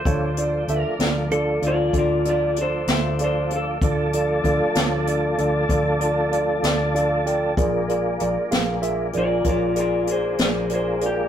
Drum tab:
HH |xxxxxxxxxxxx|xxxxxxxxxxxx|xxxxxxxxxxxx|
SD |---o-----o--|---o-----o--|---o-----o--|
BD |o-----o-----|o-o---o-----|o-----o-----|